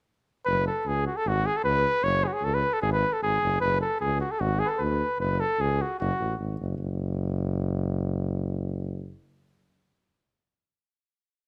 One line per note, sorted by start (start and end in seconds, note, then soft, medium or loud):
0.46 0.68 F#1 medium
0.46 0.64 B4 medium
0.67 0.89 A4 medium
0.85 1.07 C#2 medium
0.85 1.06 G#4 medium
1.07 1.18 F#4 medium
1.16 1.29 A4 medium
1.25 1.47 G#1 medium
1.25 1.48 F#4 loud
1.46 1.58 G#4 medium
1.57 1.64 A4 medium
1.64 1.85 C#2 medium
1.64 2.05 B4 loud
2.02 2.24 F#1 medium
2.02 2.26 C#5 loud
2.24 2.35 F#4 medium
2.24 2.29 G#4 medium
2.33 2.46 G#4 medium
2.41 2.63 C#2 medium
2.41 2.56 A4 medium
2.54 2.75 B4 medium
2.73 2.81 A4 medium
2.81 3.03 G#1 medium
2.81 2.92 G#4 medium
2.93 3.15 B4 medium
3.13 3.22 A4 medium
3.23 3.40 G#1 medium
3.23 3.59 G#4 medium
3.41 3.59 F#1 medium
3.60 3.83 F#1 medium
3.60 3.79 B4 medium
3.81 4.00 A4 medium
4.00 4.23 C#2 medium
4.00 4.19 G#4 medium
4.21 4.33 F#4 medium
4.31 4.42 A4 medium
4.39 4.62 G#1 medium
4.39 4.61 F#4 medium
4.59 4.65 G#4 medium
4.66 4.80 A4 medium
4.66 4.70 B4 medium
4.79 5.02 D2 medium
4.79 5.20 B4 medium
5.19 5.41 F#1 medium
5.19 5.42 B4 medium
5.40 5.62 A4 medium
5.59 5.81 C#2 medium
5.59 5.83 G#4 medium
5.82 5.99 F#4 medium
5.99 6.11 F#1 medium
5.99 6.37 F#4 medium
6.20 6.38 A1 medium
6.39 6.57 G#1 medium
6.60 6.77 F#1 medium
6.78 9.13 F#1 medium